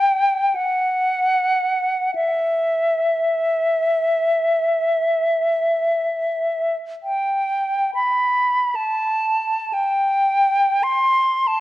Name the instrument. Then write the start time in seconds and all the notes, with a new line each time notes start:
flute
Already playing: G5
0.55 F#5
2.15 E5
7.03 G5
7.94 B5
8.75 A5
9.73 G5
10.83 C6
11.48 A5